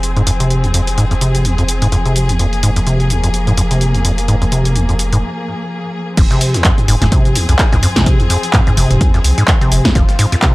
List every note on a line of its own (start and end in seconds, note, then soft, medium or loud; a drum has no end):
0.00 5.23 F1 medium
0.00 6.13 F3 medium
0.00 2.36 C4 medium
0.00 6.13 G#4 medium
0.00 closed hi-hat medium
0.00 shaker soft
0.17 0.22 G#2 loud
0.17 closed hi-hat soft
0.17 shaker soft
0.27 0.31 F2 loud
0.27 closed hi-hat medium
0.27 shaker medium
0.40 0.65 C3 medium
0.40 closed hi-hat soft
0.40 shaker soft
0.50 closed hi-hat medium
0.50 shaker soft
0.64 0.72 D#2 medium
0.64 closed hi-hat soft
0.64 shaker soft
0.74 0.81 F2 medium
0.74 closed hi-hat medium
0.74 shaker medium
0.87 closed hi-hat medium
0.87 shaker soft
0.98 1.05 G#2 loud
0.98 closed hi-hat medium
0.98 shaker soft
1.11 1.14 F2 loud
1.11 closed hi-hat soft
1.11 shaker soft
1.21 1.46 C3 medium
1.21 closed hi-hat medium
1.21 shaker medium
1.35 closed hi-hat medium
1.35 shaker soft
1.45 1.56 D#2 medium
1.45 closed hi-hat medium
1.45 shaker soft
1.58 1.64 F2 medium
1.58 closed hi-hat soft
1.58 shaker soft
1.69 closed hi-hat medium
1.69 shaker medium
1.82 1.88 G#2 loud
1.82 closed hi-hat medium
1.82 shaker soft
1.92 1.97 F2 loud
1.92 closed hi-hat soft
1.92 shaker soft
2.06 2.31 C3 medium
2.06 closed hi-hat soft
2.06 shaker soft
2.16 closed hi-hat medium
2.16 shaker medium
2.29 2.38 D#2 medium
2.29 closed hi-hat medium
2.29 shaker soft
2.39 2.47 F2 medium
2.39 6.14 A#3 medium
2.39 closed hi-hat medium
2.39 shaker soft
2.53 closed hi-hat soft
2.53 shaker soft
2.63 2.70 G#2 loud
2.63 closed hi-hat medium
2.63 shaker medium
2.76 2.80 F2 loud
2.76 closed hi-hat soft
2.76 shaker soft
2.87 3.12 C3 medium
2.87 closed hi-hat soft
2.87 shaker soft
3.00 closed hi-hat soft
3.00 shaker soft
3.10 3.21 D#2 medium
3.10 closed hi-hat medium
3.10 shaker medium
3.24 3.29 F2 medium
3.24 closed hi-hat soft
3.24 shaker soft
3.34 closed hi-hat soft
3.34 shaker soft
3.47 3.53 G#2 loud
3.47 closed hi-hat soft
3.47 shaker soft
3.58 3.62 F2 loud
3.58 closed hi-hat medium
3.58 shaker medium
3.71 3.96 C3 medium
3.71 closed hi-hat soft
3.71 shaker soft
3.81 closed hi-hat soft
3.81 shaker soft
3.94 4.03 D#2 medium
3.94 closed hi-hat soft
3.94 shaker soft
4.05 4.12 F2 medium
4.05 closed hi-hat medium
4.05 shaker medium
4.18 closed hi-hat soft
4.18 shaker soft
4.28 4.36 G#2 loud
4.28 closed hi-hat soft
4.28 shaker soft
4.42 4.45 F2 loud
4.42 closed hi-hat soft
4.42 shaker soft
4.52 4.77 C3 medium
4.52 closed hi-hat medium
4.52 shaker medium
4.65 closed hi-hat soft
4.65 shaker soft
4.76 4.87 D#2 medium
4.76 closed hi-hat soft
4.76 shaker soft
4.89 4.95 F2 medium
4.89 closed hi-hat soft
4.89 shaker soft
4.99 closed hi-hat medium
4.99 shaker medium
5.13 5.18 G#2 loud
5.13 closed hi-hat soft
5.13 shaker soft
6.17 6.26 F1 loud
6.17 6.22 F2 loud
6.17 10.55 F3 medium
6.17 10.55 C4 medium
6.17 9.94 G#4 medium
6.17 kick loud
6.17 closed hi-hat medium
6.17 crash loud
6.17 shaker soft
6.31 6.56 C3 medium
6.31 snare medium
6.31 closed hi-hat soft
6.31 shaker soft
6.41 closed hi-hat medium
6.41 open hi-hat loud
6.41 shaker medium
6.54 6.63 D#2 medium
6.54 snare medium
6.54 closed hi-hat medium
6.54 shaker soft
6.64 6.72 F2 medium
6.64 kick loud
6.64 snare loud
6.64 clap loud
6.64 closed hi-hat medium
6.64 shaker soft
6.78 closed hi-hat soft
6.78 mid tom medium
6.78 shaker soft
6.88 6.97 F1 medium
6.88 6.96 G#2 loud
6.88 closed hi-hat medium
6.88 open hi-hat loud
6.88 shaker medium
7.02 7.08 F1 loud
7.02 7.05 F2 loud
7.02 snare soft
7.02 closed hi-hat medium
7.02 closed hi-hat soft
7.02 mid tom medium
7.02 shaker soft
7.12 7.37 C3 medium
7.12 kick loud
7.12 closed hi-hat medium
7.12 shaker soft
7.25 closed hi-hat soft
7.25 shaker soft
7.35 7.47 D#2 medium
7.35 closed hi-hat medium
7.35 open hi-hat loud
7.35 shaker medium
7.49 7.55 C2 medium
7.49 7.54 F2 medium
7.49 closed hi-hat medium
7.49 shaker soft
7.59 kick loud
7.59 snare loud
7.59 clap loud
7.59 closed hi-hat medium
7.59 shaker soft
7.72 7.79 C2 loud
7.72 7.78 G#2 loud
7.72 snare soft
7.72 closed hi-hat soft
7.72 mid tom medium
7.72 shaker soft
7.83 7.87 F2 loud
7.83 closed hi-hat medium
7.83 open hi-hat loud
7.83 shaker medium
7.96 8.02 F2 medium
7.96 8.21 C3 medium
7.96 kick medium
7.96 snare soft
7.96 snare medium
7.96 closed hi-hat medium
7.96 shaker soft
8.06 kick loud
8.06 closed hi-hat medium
8.06 shaker soft
8.20 8.28 D#2 medium
8.20 closed hi-hat soft
8.20 shaker soft
8.30 8.37 F2 medium
8.30 closed hi-hat medium
8.30 open hi-hat loud
8.30 shaker medium
8.43 closed hi-hat medium
8.43 shaker soft
8.53 8.61 G#2 loud
8.53 kick loud
8.53 snare loud
8.53 clap loud
8.53 closed hi-hat medium
8.53 shaker soft
8.67 8.70 F2 loud
8.67 closed hi-hat soft
8.67 mid tom medium
8.67 shaker soft
8.77 8.86 F1 medium
8.77 9.02 C3 medium
8.77 closed hi-hat medium
8.77 open hi-hat loud
8.77 shaker medium
8.91 8.97 F1 loud
8.91 closed hi-hat medium
8.91 mid tom medium
8.91 shaker soft
9.01 9.12 D#2 medium
9.01 kick loud
9.01 closed hi-hat medium
9.01 shaker soft
9.14 9.20 F2 medium
9.14 snare medium
9.14 closed hi-hat soft
9.14 shaker soft
9.24 9.33 C2 loud
9.24 closed hi-hat medium
9.24 open hi-hat loud
9.24 shaker medium
9.38 9.44 G#2 loud
9.38 closed hi-hat medium
9.38 shaker soft
9.48 9.53 F2 loud
9.48 kick loud
9.48 snare loud
9.48 clap loud
9.48 closed hi-hat medium
9.48 shaker soft
9.61 9.87 C3 medium
9.61 snare soft
9.61 closed hi-hat soft
9.61 shaker soft
9.72 9.80 F1 loud
9.72 closed hi-hat medium
9.72 open hi-hat loud
9.72 shaker medium
9.85 9.94 D#2 medium
9.85 kick medium
9.85 snare medium
9.85 snare soft
9.85 closed hi-hat medium
9.85 shaker soft
9.95 10.04 F1 loud
9.95 10.03 F2 medium
9.95 10.55 F4 medium
9.95 kick loud
9.95 closed hi-hat medium
9.95 shaker soft
10.09 snare medium
10.09 closed hi-hat soft
10.09 shaker soft
10.19 10.26 G#2 loud
10.19 closed hi-hat medium
10.19 open hi-hat loud
10.19 shaker medium
10.32 10.36 F2 loud
10.32 snare medium
10.32 closed hi-hat medium
10.32 shaker soft
10.42 10.55 C3 medium
10.42 kick loud
10.42 snare loud
10.42 clap loud
10.42 closed hi-hat medium
10.42 shaker soft